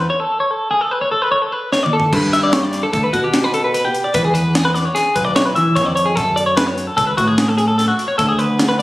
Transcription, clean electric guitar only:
0.10 0.20 C#5 medium
0.20 0.40 A4 medium
0.40 0.51 C#5 medium
0.51 0.70 A4 medium
0.71 0.81 G#4 medium
0.81 0.91 A4 medium
0.91 1.01 B4 medium
1.01 1.11 C#5 medium
1.12 1.22 A4 medium
1.22 1.31 B4 medium
1.32 1.42 C#5 medium
1.42 1.52 A4 medium
1.52 1.72 B4 medium
1.73 1.83 C#5 medium
1.83 1.93 D5 medium
1.93 2.13 A4 medium
2.13 2.33 B4 medium
2.33 2.43 E5 medium
2.43 2.53 D5 medium
2.53 2.63 C#5 medium
2.63 2.83 D5 medium
2.83 2.92 A4 medium
2.93 3.03 A4 medium
3.04 3.14 B4 medium
3.13 3.23 F#4 medium
3.24 3.44 G4 medium
3.44 3.54 B4 medium
3.54 3.64 A4 medium
3.64 3.73 B4 medium
3.74 3.84 B4 medium
3.85 4.05 G4 medium
4.04 4.15 D5 medium
4.14 4.24 B4 medium
4.25 4.34 G#4 medium
4.34 4.55 B4 medium
4.55 4.65 G#4 medium
4.65 4.75 B4 medium
4.75 4.85 D5 medium
4.85 4.95 C#5 medium
4.95 5.15 G#4 medium
5.16 5.25 B4 medium
5.25 5.35 D5 medium
5.36 5.46 C#5 medium
5.46 5.55 B4 medium
5.56 5.75 E5 medium
5.76 5.86 C#5 medium
5.86 5.95 D5 medium
5.96 6.06 C#5 medium
6.06 6.16 G#4 medium
6.16 6.36 A4 medium
6.36 6.46 D5 medium
6.46 6.56 C#5 medium
6.57 6.67 B4 medium
6.67 6.87 C#5 medium
6.87 6.96 A4 medium
6.97 7.07 A4 medium
7.07 7.17 B4 medium
7.17 7.28 F#4 medium
7.28 7.48 G#4 medium
7.48 7.57 A4 medium
7.58 7.67 G#4 medium
7.68 7.77 A4 medium
7.78 7.87 A4 medium
7.88 8.07 F#4 medium
8.08 8.18 C#5 medium
8.18 8.28 A4 medium
8.29 8.39 G#4 medium
8.39 8.59 B4 medium
8.59 8.68 G#4 medium
8.69 8.79 B4 medium
8.79 8.82 D5 medium

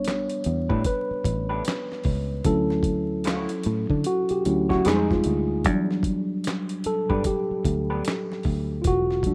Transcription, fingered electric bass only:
0.00 0.26 A1 loud
0.46 0.68 E2 medium
0.70 0.84 A2 loud
1.11 muted fingered electric bass stroke soft
1.25 1.61 A1 medium
2.05 2.41 C#2 medium
2.45 3.46 D2 loud
3.66 3.87 A2 medium
3.90 4.04 D3 medium
4.31 muted fingered electric bass stroke soft
4.46 4.81 D2 medium
4.86 5.21 F2 medium
5.26 5.65 D2 medium
5.65 6.36 E2 loud
6.86 muted fingered electric bass stroke soft
7.11 7.24 G2 medium
7.51 muted fingered electric bass stroke soft
7.65 8.01 D2 loud
8.46 8.81 D2 medium
8.85 9.34 E1 medium

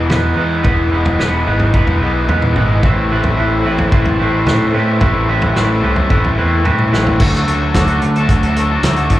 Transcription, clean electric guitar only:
0.00 0.10 B3 medium
0.00 0.11 B4 medium
0.10 0.35 G#3 medium
0.10 0.36 B3 loud
0.10 0.35 D#4 loud
0.10 0.37 B4 loud
0.36 0.61 G#3 medium
0.36 0.63 B3 medium
0.36 0.63 D#4 medium
0.36 0.63 B4 medium
0.63 0.90 G#3 medium
0.63 0.91 B3 medium
0.63 0.90 D#4 loud
0.63 0.92 B4 loud
0.91 1.18 G#3 medium
0.91 1.19 B3 medium
0.91 1.18 D#4 medium
0.91 1.20 B4 medium
1.19 1.45 G#3 loud
1.19 1.47 B3 loud
1.19 1.46 D#4 loud
1.19 1.47 B4 loud
1.47 1.73 G#3 medium
1.47 1.73 B3 medium
1.47 1.73 D#4 medium
1.47 1.74 B4 medium
1.74 2.01 G#3 medium
1.74 2.02 B3 loud
1.74 2.01 D#4 loud
1.74 2.02 B4 loud
2.02 2.27 G#3 medium
2.02 2.28 B3 medium
2.02 2.28 D#4 loud
2.02 2.29 B4 medium
2.29 2.55 G#3 loud
2.29 2.55 B3 medium
2.29 2.55 D#4 medium
2.29 2.56 B4 loud
2.56 2.82 G#3 medium
2.56 2.82 B3 medium
2.56 2.82 D#4 loud
2.56 2.83 B4 medium
2.82 3.11 A3 medium
2.82 3.11 C4 loud
2.82 3.11 E4 medium
2.82 3.11 B4 loud
3.11 3.37 A3 medium
3.11 3.37 C4 medium
3.11 3.38 E4 medium
3.11 3.38 B4 medium
3.37 3.64 A3 loud
3.37 3.65 C4 loud
3.37 3.65 E4 loud
3.37 3.66 B4 loud
3.65 3.91 A3 medium
3.65 3.91 C4 medium
3.65 3.92 E4 medium
3.65 3.92 B4 medium
3.92 4.19 A3 loud
3.92 4.18 C4 loud
3.92 4.18 E4 loud
3.92 4.19 B4 medium
4.19 4.46 A3 medium
4.19 4.45 C4 medium
4.19 4.46 E4 medium
4.19 4.46 B4 medium
4.46 4.73 A3 loud
4.46 4.73 C4 loud
4.46 4.73 E4 loud
4.46 4.73 B4 loud
4.74 4.99 A3 medium
4.74 5.00 C4 medium
4.74 5.00 E4 medium
4.74 5.01 B4 medium
5.01 5.28 A3 medium
5.01 5.28 C4 medium
5.01 5.29 E4 medium
5.01 5.28 B4 loud
5.29 5.55 A3 medium
5.29 5.55 C4 medium
5.29 5.55 E4 medium
5.29 5.56 B4 loud
5.56 5.82 A3 loud
5.56 5.82 C4 loud
5.56 5.82 E4 loud
5.56 5.82 B4 loud
5.83 6.08 A3 medium
5.83 6.09 C4 medium
5.83 6.09 E4 medium
5.83 6.09 B4 medium
6.09 6.36 A3 loud
6.09 6.36 C4 loud
6.09 6.37 E4 loud
6.09 6.38 B4 loud
6.38 6.63 A3 medium
6.38 6.64 C4 medium
6.38 6.64 E4 medium
6.38 6.65 B4 medium
6.64 6.91 A3 loud
6.64 6.91 C4 loud
6.64 6.92 E4 loud
6.64 6.92 B4 loud
6.92 7.18 A3 medium
6.92 7.19 C4 medium
6.92 7.19 E4 medium
6.92 7.19 B4 medium
7.20 7.75 F#3 medium
7.77 8.56 F#3 medium
8.01 8.84 A3 medium
8.57 9.20 F#3 medium
8.84 9.20 A3 medium

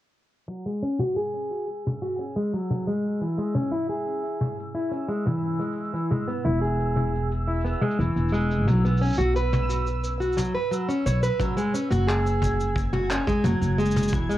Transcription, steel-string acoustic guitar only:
0.48 0.64 F#3 medium
0.66 0.81 G#3 medium
0.82 0.98 C#4 medium
0.99 1.15 F#4 medium
1.16 1.83 G#4 medium
2.02 2.18 F#4 medium
2.19 2.35 C#4 medium
2.36 2.52 G#3 medium
2.54 2.86 F#3 medium
2.87 3.20 G#3 medium
3.21 3.37 E3 medium
3.38 3.54 G#3 medium
3.55 3.71 C#4 medium
3.72 3.88 E4 medium
3.89 4.56 G#4 medium
4.75 4.90 E4 medium
4.91 5.07 C#4 medium
5.08 5.24 G#3 medium
5.26 5.58 E3 medium
5.59 5.92 G#3 medium
5.94 6.09 E3 medium
6.11 6.27 G#3 medium
6.28 6.44 B3 medium
6.45 6.61 E4 medium
6.61 7.29 G#4 medium
7.47 7.63 E4 medium
7.64 7.80 B3 medium
7.81 7.97 G#3 medium
7.99 8.31 E3 medium
8.32 8.65 G#3 medium
8.67 8.83 F#3 medium
8.85 9.00 B3 medium
9.01 9.17 C#4 medium
9.18 9.34 F#4 medium
9.36 10.02 B4 medium
10.20 10.36 F#4 medium
10.37 10.53 F#3 medium
10.55 10.70 B4 medium
10.71 10.87 F#3 medium
10.89 11.04 C#4 medium
11.06 11.21 C#5 medium
11.23 11.38 B4 medium
11.40 11.55 F#3 medium
11.57 11.72 G#3 medium
11.74 11.89 C#4 medium
11.91 12.06 F#4 medium
12.07 12.74 G#4 medium
12.93 13.09 F#4 medium
13.10 13.26 C#4 medium
13.27 13.43 G#3 medium
13.44 13.77 F#3 medium
13.78 14.11 G#3 loud
14.12 14.28 E3 medium
14.29 14.38 G#3 medium

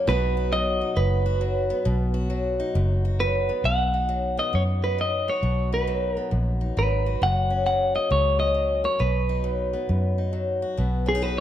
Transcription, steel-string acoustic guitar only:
0.07 0.97 B2 medium
0.07 0.52 F#3 medium
0.07 1.70 B3 medium
0.07 0.81 D#4 medium
0.07 0.37 F#4 medium
0.37 1.25 F#4 medium
0.52 1.40 F#3 medium
0.81 2.59 D#4 medium
1.26 2.13 F#4 medium
1.41 2.29 F#3 medium
1.70 3.49 B3 medium
1.85 2.75 B2 medium
2.14 3.03 F#4 medium
2.30 3.19 F#3 medium
2.60 3.63 D#4 medium
2.75 3.64 F#2 medium
3.05 5.27 F#4 medium
3.20 3.63 F#3 medium
3.49 3.63 B3 medium
3.64 4.54 B2 medium
3.94 4.83 D#4 medium
4.09 4.98 F#3 medium
4.37 5.41 B3 medium
4.53 5.43 F#2 medium
4.84 5.42 D#4 soft
4.98 5.87 F#3 medium
5.28 7.06 F#4 medium
5.43 6.32 B2 medium
5.72 6.60 D#4 medium
5.87 6.76 F#3 medium
6.17 7.20 B3 soft
6.31 7.20 F#2 medium
6.61 7.20 D#4 medium
6.77 7.66 F#3 medium
7.06 8.84 F#4 medium
7.22 9.00 F#2 medium
7.50 8.38 C#4 medium
7.66 8.54 F#3 medium
7.95 8.98 A#3 medium
8.10 8.55 C#3 medium
8.39 9.00 C#4 medium
8.54 9.43 F#3 medium
8.84 8.98 A#4 medium
9.00 9.89 B2 medium
9.29 10.17 D#4 medium
9.44 10.32 F#3 medium
9.73 10.77 B3 medium
9.89 10.78 F#2 medium
10.18 10.77 D#4 medium
10.33 10.76 F#3 medium
10.62 11.21 F#4 medium
10.77 11.40 B2 medium
10.77 11.40 B3 medium
11.06 11.15 C#4 medium
11.15 11.40 D#4 soft
11.22 11.40 F#3 medium
11.22 11.40 F#4 medium

